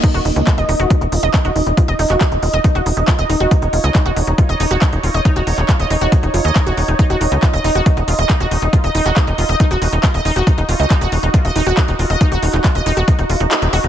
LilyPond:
<<
  \new Staff \with { instrumentName = "Synth texture" } { \time 4/4 \key ees \minor \tempo 4 = 138 <ees' ees''>1~ | <ees' ees''>1 | des''1~ | des''1 |
ees''1~ | ees''1 | ges'1~ | ges'1 | }
  \new Staff \with { instrumentName = "Synth arpeggio sound" } { \time 4/4 \key ees \minor ees'16 ges'16 ees'16 ees'16 f'16 ees''16 ees'16 ges'16 r16 ees'16 f'16 ees''16 ees'16 ges'16 ees'16 ees'16 | f'16 ees''16 ees'16 ges'16 r16 ees'16 f'16 ees''16 ees'16 ges'16 ees'16 ees'16 f'16 ees''16 ees'16 ges'16 | ees'16 ees'16 f'16 ees''16 ees'16 ges'16 ees'16 ees'16 f'16 ees''16 ees'16 ges'16 ees'16 ees'16 f'16 ees''16 | ees'16 ges'16 ees'16 ees'16 f'16 ees''16 ees'16 ges'16 ees'16 ees'16 f'16 ees''16 ees'16 ges'16 ees'16 ees'16 |
ees'16 ges'16 ees'16 ees'16 f'16 ees''16 ees'16 ges'16 ees'16 ees'16 f'16 ees''16 ees'16 ges'16 ees'16 ees'16 | f'16 ees''16 ees'16 ges'16 ees'16 ees'16 f'16 ees''16 ees'16 ges'16 ees'16 ees'16 f'16 ees''16 ees'16 ges'16 | ees'16 ees'16 f'16 ees''16 ees'16 ges'16 ees'16 ees'16 f'16 ees''16 ees'16 ges'16 ees'16 ees'16 f'16 ees''16 | ees'16 ges'16 ees'16 ees'16 f'16 ees''16 ees'16 ges'16 ees'16 ees'16 f'16 ees'16 ees'16 ees'16 ges'16 ees'16 | }
  \new Staff \with { instrumentName = "Analog synth bass" } { \clef bass \time 4/4 \key ees \minor r16 ees,,16 ees,,16 des,16 r16 ees,,16 ees,,16 ees,,16 r16 ees,,16 ees,,16 ees,,16 r16 ees,,16 ees,,16 ees,,16 | r16 ees,,16 ees,,16 ees,,16 r16 ees,,16 ees,,16 ees,,16 r16 ees,,16 ees,,16 ees,,16 r16 ees,,16 ees,,16 ees,,16 | r16 ees,,16 ees,,16 des,16 r16 ees,,16 ees,,16 ees,,16 r16 ees,,16 ees,,16 ees,,16 r16 ees,,16 ees,,16 ees,,16 | r16 ees,,16 ees,,16 ees,,16 r16 ees,,16 ees,,16 ees,,16 r16 ees,,16 f,,16 ees,16 r16 ees,,16 ees,,16 ees,,16 |
r16 ees,,16 ees,,16 des,16 r16 ees,,16 ees,,16 ees,,16 r16 ees,,16 ees,,16 ees,,16 r16 ees,,16 ees,,16 ees,,16 | r16 ees,,16 ees,,16 ees,,16 r16 ees,,16 ees,,16 ees,,16 r16 ees,,16 ees,,16 ees,,16 r16 ees,,16 ees,,16 ees,,16 | r16 ees,,16 ees,,16 des,16 r16 ees,,16 ees,,16 ees,,16 r16 ees,,16 ees,,16 ees,,16 r16 ees,,16 ees,,16 ees,,16 | r16 ees,,16 ees,,16 ees,,16 r16 ees,,16 ees,,16 ees,,16 r16 ees,,16 ees,,16 ees,,16 r16 ees,,16 ees,,16 ees,,16 | }
  \new DrumStaff \with { instrumentName = "Drums" } \drummode { \time 4/4 <cymc hh bd>16 hh16 hho16 hh16 <hc hh bd>16 hh16 hho16 hh16 <hh bd>16 hh16 hho16 hh16 <hc hh bd>16 hh16 hho16 hh16 | <hh bd>16 hh16 hho16 <hc hh>16 <hc hh bd>16 hh16 hho16 hh16 <hh bd>16 hh16 hho16 hh16 <hc hh bd>16 hh16 hho16 hh16 | <hh bd>16 hh16 hho16 hh16 <hc hh bd>16 hh16 hho16 hh16 <hh bd>16 hh16 hho16 hh16 <hc hh bd>16 hh16 hho16 hh16 | <hh bd>16 hh16 hho16 <hc hh>16 <hc hh bd>16 hh16 hho16 hh16 <hh bd>16 hh16 hho16 hh16 <hc hh bd>16 hh16 hho16 hh16 |
<hh bd>16 hh16 hho16 hh16 <hc hh bd>16 hh16 hho16 hh16 <hh bd>16 hh16 hho16 hh16 <hc hh bd>16 hh16 hho16 hh16 | <hh bd>16 hh16 hho16 <hc hh>16 <hc hh bd>16 hh16 hho16 hh16 <hh bd>16 hh16 hho16 hh16 <hc hh bd>16 hh16 hho16 hh16 | <hh bd>16 hh16 hho16 hh16 <hc hh bd>16 hh16 hho16 hh16 <hh bd>16 hh16 hho16 hh16 <hc hh bd>16 hh16 hho16 hh16 | <hh bd>16 hh16 hho16 <hc hh>16 <hc hh bd>16 hh16 hho16 hh16 <hh bd>16 hh16 hho16 hh16 <hc hh>16 hh16 hho16 hh16 | }
>>